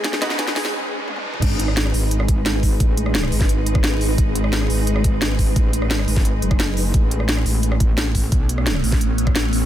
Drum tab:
CC |----------------|x---------------|----------------|----------------|
HH |x-x-x-o---------|x-x-x-o-x-x-x-o-|x-x-x-o-x-x-x-o-|x-x-x-o-x-x-x-o-|
SD |oooooooo--------|---ror---r--o---|---ror-o---ro---|---ror---r--o---|
T1 |------------oo--|----------------|----------------|----------------|
T2 |---------------o|----------------|----------------|----------------|
BD |o---o-----------|o---------o---o-|o------o---o----|o---------o---o-|

CC |----------------|----------------|----------------|
HH |x-x-x-o-x-x-x-o-|x-x-x-o-x-x-x-o-|x-x-x-o-x-x-x-o-|
SD |---ror-o---ro---|---ror---r--o---|---ror-o---ro---|
T1 |----------------|----------------|----------------|
T2 |----------------|----------------|----------------|
BD |o------o---o----|o---------o---o-|o------o---o----|